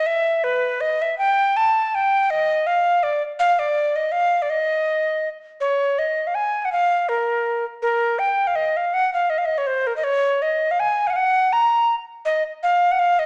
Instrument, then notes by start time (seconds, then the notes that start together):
recorder
0.06 E5
0.44 B4
0.81 D#5
1.02 E5
1.18 G5
1.56 A5
1.95 G5
2.30 D#5
2.67 F5
3.03 D5
3.39 F5
3.59 D5
3.96 D#5
4.12 F5
4.42 D5
4.50 D#5
5.60 C#5
5.98 D#5
6.27 F5
6.35 G#5
6.62 F#5 G#5
6.72 F5
7.09 A#4
7.82 A#4
8.19 G5
8.47 F5
8.55 D#5
8.77 F5
8.94 F#5
9.14 F5
9.30 D#5
9.38 F5
9.45 D#5
9.58 C#5
9.67 C5
9.87 A#4
9.96 D#5
10.04 C#5
10.42 D#5
10.71 F5
10.80 G#5
11.07 F5 F#5
11.12 F5
11.16 F#5
11.52 A#5
12.25 D#5
12.63 F5
12.91 F#5
12.99 F5
13.19 D#5